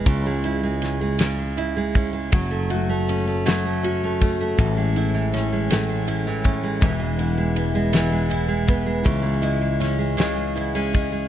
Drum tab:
RD |xxxxxx|xxxxxx|xxxxxx|xxxxxx|
SD |--oo--|---o--|--oo--|---o--|
BD |o----o|o----o|o----o|o----o|

RD |xxxxxx|
SD |--oo--|
BD |o----o|